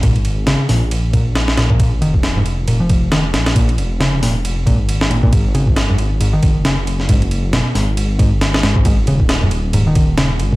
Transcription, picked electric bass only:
X:1
M:4/4
L:1/16
Q:"Swing 16ths" 1/4=136
K:Bbm
V:1 name="Picked electric bass" clef=bass
B,, z3 D,2 B,, z3 B,, z3 B,, B,, | B,, z E, z2 A,, z2 B,, F,3 E, z3 | B,, z3 D,2 B,, z3 B,, z3 B,, B,, | A,, z D, z2 G,, z2 A,, E,3 D, z3 |
A,, z3 _C,2 A,, z3 A,, z3 A,, A,, | A,, z D, z2 G,, z2 A,, E,3 D, z3 |]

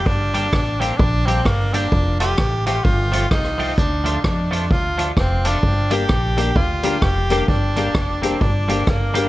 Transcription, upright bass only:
X:1
M:4/4
L:1/8
Q:"Swing" 1/4=129
K:Gm
V:1 name="Upright bass" clef=bass
G,,,2 A,,,2 B,,,2 G,,,2 | F,,,2 A,,,2 G,,,2 C,,2 | D,,2 F,,2 D,,2 F,,,2 | G,,,2 B,,,2 D,,2 F,,,2 |
G,,,2 F,,,2 G,,,2 G,,,2 |]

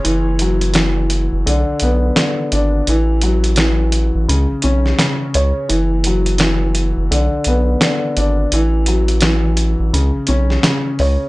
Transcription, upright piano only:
X:1
M:4/4
L:1/8
Q:"Swing 16ths" 1/4=85
K:Bdor
V:1 name="Upright piano" clef=bass
E, F, E,2 D, B, D, D | E, F, E,2 C, C C, c | E, F, E,2 D, B, D, D | E, F, E,2 C, C C, c |]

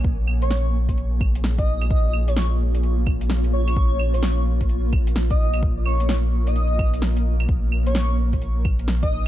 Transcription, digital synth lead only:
X:1
M:4/4
L:1/16
Q:"Swing 16ths" 1/4=129
K:Bbm
V:1 name="Digital synth lead"
z3 d2 z8 e2 z | e2 z d d z8 z d2- | d3 d2 z8 e2 z | z2 d2 z3 e4 z4 z |
z3 d2 z8 e2 z |]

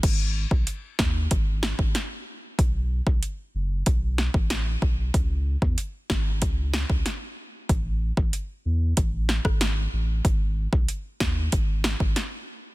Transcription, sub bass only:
X:1
M:4/4
L:1/16
Q:1/4=94
K:Alyd
V:1 name="Sub bass" clef=bass
G,,,3 B,,, z2 D,,2 G,,,3 G,,, z4 | B,,,3 B,,, z2 F,,,2 B,,,3 A,,,3 B,,,2 | C,,3 E,, z2 G,,,2 C,,3 C,, z4 | A,,,3 A,,, z2 E,,2 A,,,3 G,,,3 A,,,2 |
G,,,3 B,,, z2 D,,2 G,,,3 G,,, z4 |]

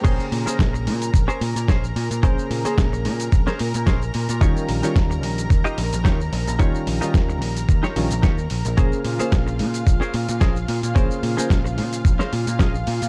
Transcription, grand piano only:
X:1
M:4/4
L:1/16
Q:"Swing 16ths" 1/4=110
K:Bbdor
V:1 name="Grand piano"
[D,B,Ac]3 [D,B,Ac]12- [D,B,Ac] | [D,B,Ac]3 [D,B,A]12- [D,B,A] | [E,G,DF]3 [E,G,DF]12- [E,G,DF] | [E,G,DF]3 [E,G,DF]6- [E,G,DF] [E,G,DF] z4 z |
[D,B,Ac]3 [D,B,Ac]12- [D,B,Ac] | [D,B,Ac]3 [D,B,Ac]12- [D,B,Ac] |]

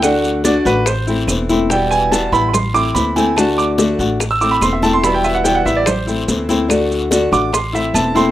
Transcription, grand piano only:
X:1
M:4/4
L:1/16
Q:1/4=144
K:Ador
V:1 name="Grand piano"
f4 d2 B2 c4 z4 | g2 ^g2 a2 b2 [bc']2 d'2 b2 g2 | a2 d'2 z4 z e' d' b c' e a c' | b g e f g f e d c8 |
z6 d'2 c'2 e2 a2 c'2 |]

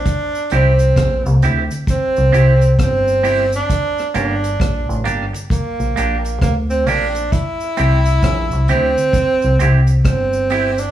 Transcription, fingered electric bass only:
X:1
M:4/4
L:1/16
Q:"Swing 16ths" 1/4=66
K:Cmix
V:1 name="Fingered electric bass" clef=bass
z2 C,,2 B,,, C,, D,, z2 C,, C,,2 G,,,4 | z2 G,,,2 B,,, A,,, G,,, z2 B,,, B,,,2 D,,2 B,,,2 | z2 C,,2 B,,, C,, D,, z2 C,, C,,2 G,,,4 |]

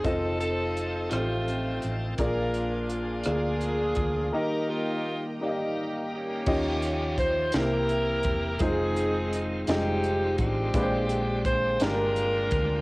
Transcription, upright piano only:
X:1
M:6/8
L:1/8
Q:3/8=56
K:Fm
V:1 name="Upright piano"
[CF=Ae]3 [CFGAc]3 | [B,,B,FA=d]3 [B,FAd]3 | [E,B,EGe]3 [B,EG=de]3 | [E,DFGe]3 [C,B,=EGc]3 |
[A,EFc]3 [G,A,EFe]3 | [B,,A,=DG_c=c]3 [A,DGB]3 |]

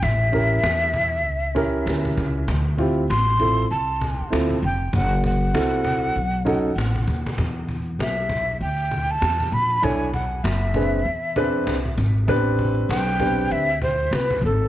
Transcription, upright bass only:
X:1
M:4/4
L:1/16
Q:"Swing 16ths" 1/4=98
K:Am
V:1 name="Upright bass" clef=bass
A,,,4 E,,4 ^C,,4 D,,2 C,,2 | D,,4 A,,,4 C,,3 z D,,2 F,,,2 | ^F,,,4 C,,4 B,,,4 A,,,2 ^D,,2 | E,,4 B,,,4 D,,4 E,,2 _B,,,2 |
B,,,4 ^F,,,4 E,,4 C,,2 ^G,,,2 | A,,,4 B,,,4 D,,4 C,,2 ^G,,,2 |]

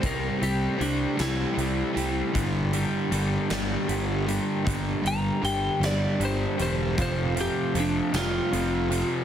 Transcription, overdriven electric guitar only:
X:1
M:6/8
L:1/8
Q:3/8=52
K:Gdor
V:1 name="Overdriven electric guitar" clef=bass
[C,G,C] [C,G,C] [C,G,C] [C,G,C] [C,G,C] [C,G,C] | [G,,D,G,] [G,,D,G,] [G,,D,G,] [G,,D,G,] [G,,D,G,] [G,,D,G,] | [G,,D,G,] [G,,D,G,] [G,,D,G,] [G,,D,G,] [G,,D,G,] [G,,D,G,] | [F,,C,F,] [F,,C,F,] [F,,C,F,] [F,,C,F,] [F,,C,F,] [F,,C,F,] |]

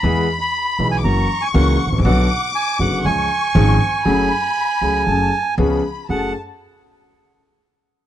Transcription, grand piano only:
X:1
M:4/4
L:1/16
Q:1/4=119
K:F#m
V:1 name="Grand piano" clef=bass
[E,,E,G,B,G]2 z4 [B,,,B,,E,G,B,G]2 [F,,E,F,^A,CF]2 z2 [C,,C,E,A,CF]2 z/2 G,,,/2 =A,,,/2 ^A,,,/2 | [B,,,B,,D,F,B,F]2 z4 [F,,,F,,D,F,B,F]2 [C,,C,^E,G,CG]2 z2 [G,,,G,,E,G,CG]2 z2 | [F,,F,A,CG]2 z4 [C,,C,F,A,CG]2 [F,,F,A,CG]2 z2 [C,,C,^E,B,CG]2 z2 | [F,,A,FG]2 z12 z2 |]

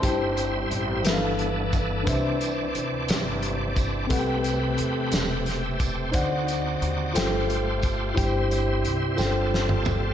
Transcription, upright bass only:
X:1
M:6/8
L:1/8
Q:3/8=59
K:C
V:1 name="Upright bass" clef=bass
G,,,2 A,,, G,,,3 | C,,2 D,, G,,,3 | C,,2 E,, E,,,3 | D,,2 _E,, G,,,3 |
G,,,2 C,, G,,,3 |]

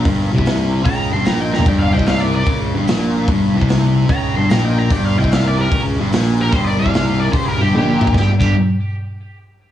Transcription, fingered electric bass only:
X:1
M:4/4
L:1/8
Q:"Swing" 1/4=148
K:Gm
V:1 name="Fingered electric bass" clef=bass
G,,, C,,3 ^C,, G,,, B,,,2 | G,,, C,,3 ^C,, G,,, B,,,2 | G,,, C,,3 ^C,, G,,, B,,,2 | G,,, C,,3 ^C,, G,,, B,,,2 |
G,,, C,,3 ^C,, G,,, B,,,2 | G,,, G,,, z6 |]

